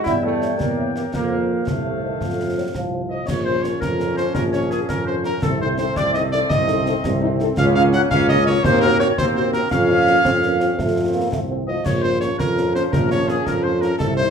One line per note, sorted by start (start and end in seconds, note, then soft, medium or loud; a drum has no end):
0.04 0.52 E2 medium
0.04 0.86 G3 medium
0.04 0.13 E4 loud
0.04 1.14 C#5 medium
0.04 0.26 E5 medium
0.04 1.14 G5 medium
0.04 concert bass drum medium
0.04 snare medium
0.24 0.58 A3 medium
0.24 0.31 G4 medium
0.24 0.58 A4 medium
0.24 0.31 C#5 medium
0.24 0.30 E5 medium
0.41 0.48 G4 medium
0.41 0.48 C#5 medium
0.41 0.48 E5 medium
0.41 snare medium
0.58 1.05 E2 medium
0.58 0.94 A#3 medium
0.58 0.93 A#4 medium
0.58 concert bass drum medium
0.58 snare medium
0.76 0.84 G4 medium
0.76 0.83 C#5 medium
0.76 0.83 E5 medium
0.95 1.03 A#3 medium
0.95 1.02 G4 medium
0.95 1.13 A#4 medium
0.95 1.02 C#5 medium
0.95 1.02 E5 medium
0.95 snare medium
1.13 1.59 F2 medium
1.13 1.60 F3 medium
1.13 1.63 A#3 medium
1.13 1.47 A#4 medium
1.13 2.94 C5 medium
1.13 2.94 F5 medium
1.13 concert bass drum medium
1.13 snare medium
1.31 1.38 C5 medium
1.50 1.56 C5 medium
1.66 2.12 C2 medium
1.66 2.04 C3 medium
1.66 2.75 A3 medium
1.66 2.71 A4 medium
1.66 concert bass drum medium
1.66 snare medium
1.85 1.92 C5 medium
2.02 2.23 D#3 medium
2.02 2.09 C5 medium
2.21 2.66 F2 medium
2.21 2.56 F3 medium
2.21 concert bass drum medium
2.21 snare medium
2.39 2.46 C5 soft
2.56 2.65 F#3 medium
2.56 2.63 C5 medium
2.75 3.19 C2 medium
2.75 3.25 F3 medium
2.75 concert bass drum medium
2.75 snare medium
2.93 2.99 C5 soft
3.10 3.18 C5 medium
3.10 3.28 D#5 medium
3.10 3.27 D#5 medium
3.27 3.74 A#1 medium
3.27 5.39 F3 medium
3.27 5.39 C#4 medium
3.27 3.46 C#5 medium
3.27 3.36 C#5 medium
3.27 concert bass drum medium
3.27 snare medium
3.27 crash medium
3.44 3.54 C#4 medium
3.44 3.53 F4 medium
3.44 3.54 A#4 medium
3.44 3.65 C5 loud
3.44 3.62 C5 medium
3.62 3.71 C#4 medium
3.62 3.71 F4 medium
3.62 3.71 A#4 medium
3.62 3.81 C#5 medium
3.62 snare medium
3.81 4.27 F2 medium
3.81 4.15 A#4 medium
3.81 4.15 A#4 loud
3.81 concert bass drum medium
3.81 snare medium
4.00 4.06 C#4 medium
4.00 4.07 F4 medium
4.00 4.07 A#4 medium
4.00 snare medium
4.17 4.25 C#4 medium
4.17 4.24 F4 medium
4.17 4.25 A#4 medium
4.17 4.25 C5 medium
4.17 4.34 C5 loud
4.17 snare medium
4.34 4.81 A#1 medium
4.34 4.42 A#4 loud
4.34 4.44 A#4 loud
4.34 concert bass drum medium
4.34 snare medium
4.52 4.60 C#4 medium
4.52 4.60 F4 medium
4.52 4.60 A#4 medium
4.52 4.60 C#5 medium
4.52 4.70 C#5 medium
4.52 snare medium
4.70 4.78 C#4 medium
4.70 4.78 F4 medium
4.70 4.87 G#4 medium
4.70 4.80 G#4 medium
4.70 4.78 A#4 medium
4.70 snare medium
4.89 5.34 F2 medium
4.89 5.06 A#4 medium
4.89 concert bass drum medium
4.89 snare medium
5.06 5.14 C#4 medium
5.06 5.14 F4 medium
5.06 5.14 A#4 medium
5.06 5.25 C5 medium
5.06 5.15 C5 loud
5.24 5.32 C#4 medium
5.24 5.31 F4 medium
5.24 5.33 A#4 medium
5.24 5.31 A#4 medium
5.24 5.45 A#4 loud
5.24 snare medium
5.42 5.88 C2 medium
5.42 7.53 A3 medium
5.42 7.54 C4 medium
5.42 5.61 A4 medium
5.42 5.51 A4 loud
5.42 concert bass drum medium
5.42 snare medium
5.42 crash soft
5.60 5.67 C4 medium
5.60 5.67 D#4 medium
5.60 5.67 A4 medium
5.60 5.69 C5 loud
5.60 5.78 C5 loud
5.78 5.84 C4 medium
5.78 5.85 D#4 medium
5.78 5.85 A4 medium
5.78 5.98 C5 loud
5.78 5.96 C5 medium
5.78 snare medium
5.96 6.42 C2 medium
5.96 6.13 D5 loud
5.96 6.14 D5 loud
5.96 concert bass drum medium
5.96 snare medium
6.14 6.21 C4 medium
6.14 6.21 D#4 medium
6.14 6.21 A4 medium
6.14 6.22 D#5 loud
6.14 6.23 D#5 loud
6.14 snare medium
6.32 6.40 C4 medium
6.32 6.40 D#4 medium
6.32 6.40 A4 medium
6.32 6.40 D5 loud
6.32 6.50 D5 loud
6.32 snare medium
6.49 6.96 C2 loud
6.49 7.17 D#5 loud
6.49 7.22 D#5 loud
6.49 concert bass drum loud
6.49 snare medium
6.68 6.75 C4 medium
6.68 6.75 D#4 medium
6.68 6.75 A4 medium
6.68 snare medium
6.86 6.94 C4 medium
6.86 6.94 D#4 medium
6.86 6.94 A4 medium
6.86 snare medium
7.04 7.49 C2 loud
7.04 concert bass drum medium
7.04 snare medium
7.21 7.28 C4 medium
7.21 7.28 D#4 medium
7.21 7.28 A4 medium
7.40 7.46 C4 medium
7.40 7.46 D#4 medium
7.40 7.47 A4 medium
7.40 snare medium
7.57 7.98 C#2 loud
7.57 8.08 A#3 loud
7.57 8.08 C#4 loud
7.57 7.65 F5 loud
7.57 7.67 F5 loud
7.57 concert bass drum medium
7.57 snare medium
7.57 crash soft
7.75 7.82 A#3 loud
7.75 7.82 C#4 medium
7.75 7.82 F4 medium
7.75 7.83 F5 loud
7.75 7.84 F5 loud
7.93 8.01 A#3 medium
7.93 8.01 C#4 loud
7.93 8.01 F4 medium
7.93 8.01 F#5 loud
7.93 8.02 F#5 loud
7.93 snare medium
8.11 8.56 C#2 loud
8.11 8.62 A#3 loud
8.11 8.61 C#4 loud
8.11 8.27 F5 loud
8.11 8.28 F5 loud
8.11 concert bass drum loud
8.11 snare medium
8.29 8.36 A#3 medium
8.29 8.36 C#4 medium
8.29 8.35 F4 loud
8.29 8.45 D#5 loud
8.29 8.46 D#5 loud
8.29 snare medium
8.46 8.53 A#3 medium
8.46 8.53 C#4 medium
8.46 8.53 F4 medium
8.46 8.65 C#5 loud
8.46 snare medium
8.64 9.09 D#2 loud
8.64 9.15 A#3 loud
8.64 9.18 C4 loud
8.64 8.80 C5 loud
8.64 8.82 C5 loud
8.64 concert bass drum loud
8.64 snare medium
8.81 8.89 A#3 medium
8.81 8.89 C4 loud
8.81 8.89 F#4 loud
8.81 8.98 A#4 loud
8.81 8.99 A#4 loud
8.81 snare medium
9.00 9.07 A#3 medium
9.00 9.07 C4 medium
9.00 9.07 F#4 medium
9.00 9.08 C#5 loud
9.00 9.18 C#5 loud
9.00 snare medium
9.18 9.63 D#2 medium
9.18 9.69 A#3 loud
9.18 9.68 C4 loud
9.18 9.35 C5 medium
9.18 9.26 C5 loud
9.18 concert bass drum medium
9.18 snare medium
9.35 9.42 A#3 medium
9.35 9.42 C4 medium
9.35 9.42 F#4 medium
9.35 9.53 C5 loud
9.35 9.45 C5 loud
9.53 9.60 A#3 medium
9.53 9.60 C4 medium
9.53 9.61 F#4 medium
9.53 9.70 A#4 loud
9.53 snare medium
9.71 10.16 F2 loud
9.71 10.74 A#3 medium
9.71 10.75 C#4 loud
9.71 11.28 F5 loud
9.71 concert bass drum medium
9.71 snare medium
9.71 crash soft
9.89 9.96 A#3 medium
9.89 9.96 C#4 medium
9.89 9.96 F4 medium
10.07 10.15 A#3 medium
10.07 10.14 C#4 medium
10.07 10.14 F4 medium
10.07 snare medium
10.25 10.70 F2 medium
10.25 10.33 C4 loud
10.25 concert bass drum medium
10.25 snare medium
10.43 10.58 A#3 medium
10.43 10.50 A#3 medium
10.43 10.50 C#4 medium
10.43 10.50 F4 medium
10.43 snare medium
10.59 10.67 A#3 medium
10.59 10.77 C4 medium
10.59 10.68 C#4 medium
10.59 10.68 F4 medium
10.59 snare medium
10.78 11.23 F2 medium
10.78 11.11 A3 medium
10.78 11.68 A3 medium
10.78 11.68 C4 medium
10.78 concert bass drum medium
10.78 snare medium
10.98 11.05 A3 medium
10.98 11.04 C4 medium
10.98 11.04 F4 medium
11.14 11.21 A3 medium
11.14 11.31 A#3 medium
11.14 11.21 C4 medium
11.14 11.21 F4 medium
11.32 11.77 C2 medium
11.32 11.40 A3 loud
11.32 concert bass drum medium
11.32 snare medium
11.49 11.56 A3 medium
11.49 11.70 C4 medium
11.49 11.56 C4 medium
11.49 11.56 F4 medium
11.68 11.86 F3 medium
11.68 11.75 A3 medium
11.68 11.74 C4 medium
11.68 11.75 F4 medium
11.68 11.76 D#5 medium
11.68 11.88 D#5 loud
11.85 12.30 A#1 loud
11.85 13.97 F3 loud
11.85 13.96 C#4 medium
11.85 11.93 C#5 loud
11.85 12.03 C#5 loud
11.85 concert bass drum medium
11.85 snare medium
11.85 crash medium
12.01 12.10 A#3 medium
12.01 12.09 C#4 medium
12.01 12.10 F4 medium
12.01 12.10 C5 medium
12.01 12.20 C5 loud
12.20 12.27 A#3 medium
12.20 12.28 C#4 medium
12.20 12.28 F4 medium
12.20 12.38 C#5 loud
12.20 12.38 C#5 medium
12.20 snare medium
12.39 12.84 F2 medium
12.39 12.75 A#4 medium
12.39 12.73 A#4 loud
12.39 concert bass drum medium
12.39 snare medium
12.57 12.63 A#3 medium
12.57 12.64 C#4 medium
12.57 12.64 F4 medium
12.57 snare medium
12.75 12.82 A#3 medium
12.75 12.82 C#4 medium
12.75 12.82 F4 medium
12.75 12.93 C5 loud
12.75 12.83 C5 loud
12.75 snare medium
12.92 13.38 A#1 loud
12.92 13.09 A#4 medium
12.92 13.10 A#4 loud
12.92 concert bass drum medium
12.92 snare medium
13.11 13.17 A#3 medium
13.11 13.18 C#4 medium
13.11 13.17 F4 medium
13.11 13.31 C#5 loud
13.11 13.21 C#5 loud
13.11 snare medium
13.28 13.35 A#3 medium
13.28 13.35 C#4 medium
13.28 13.35 F4 medium
13.28 13.48 G#4 loud
13.28 13.46 G#4 medium
13.28 snare medium
13.46 13.91 F2 medium
13.46 13.65 A#4 loud
13.46 13.56 A#4 medium
13.46 concert bass drum medium
13.46 snare medium
13.63 13.71 A#3 medium
13.63 13.71 C#4 medium
13.63 13.72 F4 medium
13.63 13.71 C5 medium
13.63 13.83 C5 loud
13.81 13.88 A#3 medium
13.81 13.89 C#4 medium
13.81 13.88 F4 medium
13.81 13.90 A#4 medium
13.81 13.98 A#4 loud
13.81 snare medium
13.98 14.30 C2 loud
13.98 14.30 D#3 loud
13.98 14.30 A3 medium
13.98 14.16 A4 loud
13.98 14.09 A4 loud
13.98 concert bass drum medium
13.98 snare medium
13.98 crash soft
14.17 14.24 A3 medium
14.17 14.24 C4 medium
14.17 14.24 D#4 medium
14.17 14.30 C5 loud
14.17 14.26 C5 loud